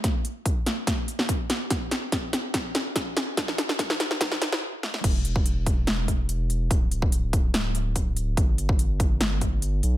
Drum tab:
CC |----------------|----------------|----------------|x---------------|
HH |x-x-x-x-x-x-x-x-|x-x-x-x-x-x-x-x-|x-x-x-x-x-x-----|x-x-x-x-x-x-x-x-|
SD |o-----o-o--o--o-|o-o-o-o-o-o-o-o-|oooooooooooo--oo|--------o-------|
BD |o---o---o---o---|o---o---o---o---|o---o---o-------|o--o--o---o-----|

CC |----------------|----------------|
HH |x-x-x-x-x-x-x-x-|x-x-x-x-x-x-x-x-|
SD |--------o-------|--------o-------|
BD |o--o--o-----o---|o--o--o---o-----|